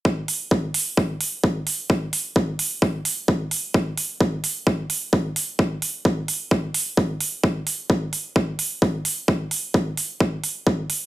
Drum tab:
HH |-o-o-o-o|-o-o-o-o|-o-o-o-o|-o-o-o-o|
BD |o-o-o-o-|o-o-o-o-|o-o-o-o-|o-o-o-o-|

HH |-o-o-o-o|-o-o-o-o|
BD |o-o-o-o-|o-o-o-o-|